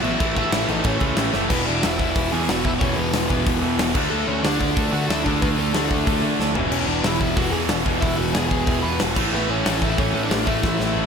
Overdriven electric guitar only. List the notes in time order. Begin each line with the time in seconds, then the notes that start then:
0.03 E4 E5
0.38 E4 E5
0.69 D#4 D#5
0.85 C#4 C#5
1.50 B3 B4
1.66 D4 D5
1.84 E4 E5
1.99 E4 E5
2.32 G#4 G#5
2.49 F#4 F#5
2.65 E4 E5
2.79 C#4 C#5
2.96 B3 B4
4.10 A3 A4
4.27 C#4 C#5
4.43 D4 D5
4.60 D4 D5
4.92 F#4 F#5
5.09 E4 E5
5.24 D4 D5
5.42 B3 B4
5.59 A3 A4
6.71 C#4 C#5
6.87 D4 D5
7.04 E4 E5
7.21 E4 E5
7.36 F#4 F#5
7.51 G#4 G#5
8.01 E4 E5
8.16 F#4 F#5
8.32 G#4 G#5
8.49 G#4 G#5
8.82 B4 B5
9.35 B3 B4
9.51 C#4 C#5
9.84 E4 E5
9.89 E4 E5
9.98 C#4 C#5
10.24 D4 D5
10.47 E4 E5